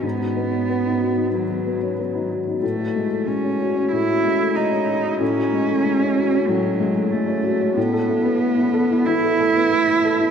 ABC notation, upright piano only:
X:1
M:4/4
L:1/16
Q:1/4=93
K:F#dor
V:1 name="Upright piano"
[G,,D] F B, C B, D F D D, F B, C B, D F D | A,, F G, A, G, C F C A,, F G, A, G, C F C | A,, F G, A, G, C F C A,,2 G, A, G, C F C | A,, A A, B, A, E A E E, A A, B, A, E A E |]